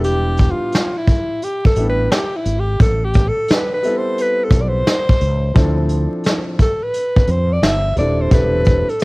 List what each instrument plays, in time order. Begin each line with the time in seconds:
Already playing: fretless electric bass E1, grand piano G3 B3 D4 E4 G4
0.04 alto saxophone G4, closed hi-hat
0.37 kick, closed hi-hat
0.51 alto saxophone F4
0.72 snare, closed hi-hat
0.97 alto saxophone E4
1.07 kick, closed hi-hat
1.42 alto saxophone G4, closed hi-hat
1.65 alto saxophone A4, kick
1.76 fretless electric bass A1, grand piano G3 B3 D4 E4 G4, closed hi-hat
1.90 alto saxophone B4
2.12 alto saxophone G4, snare, closed hi-hat
2.36 alto saxophone E4
2.45 fretless electric bass G#1, closed hi-hat
2.60 alto saxophone G4
2.80 fretless electric bass A1, alto saxophone A4, kick, closed hi-hat
3.05 alto saxophone G4
3.14 kick, closed hi-hat
3.28 alto saxophone A4
3.48 alto saxophone B4, snare, closed hi-hat
3.74 alto saxophone B4
3.82 grand piano G3 B3 C4 E4 A4, closed hi-hat
3.97 alto saxophone C5
4.18 alto saxophone B4, closed hi-hat
4.44 alto saxophone A4
4.50 fretless electric bass B1, kick, closed hi-hat
4.62 alto saxophone D5
4.68 alto saxophone C5
4.87 snare, closed hi-hat
5.09 kick, closed hi-hat
5.21 fretless electric bass C#2, closed hi-hat
5.54 fretless electric bass D2, grand piano F3 C4 D4 E4 A4, kick, closed hi-hat
5.89 closed hi-hat
6.24 snare, closed hi-hat
6.59 alto saxophone A4, kick, closed hi-hat
6.83 alto saxophone B4
6.94 closed hi-hat
7.16 kick
7.27 fretless electric bass F2, alto saxophone C5, closed hi-hat
7.53 alto saxophone D5
7.62 fretless electric bass G1, alto saxophone E5, snare, closed hi-hat
7.96 fretless electric bass D#1, grand piano G3 C4 D4 E4 A4, alto saxophone D5, closed hi-hat
8.21 alto saxophone C5
8.30 fretless electric bass E1, grand piano G3 C4 D4 E4 A4, alto saxophone B4, kick, closed hi-hat
8.65 kick, closed hi-hat
8.89 alto saxophone A4, closed hi-hat
9.00 closed hi-hat